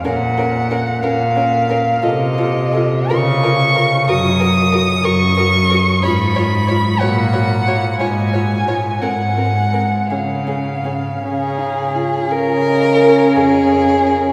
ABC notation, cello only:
X:1
M:6/8
L:1/8
Q:3/8=60
K:Db
V:1 name="Cello" clef=bass
B,,3 B,,3 | C,3 D,3 | G,,3 G,,3 | A,,3 B,,3 |
A,,3 A,,3 | D,3 D,3 | D,3 F,,3 |]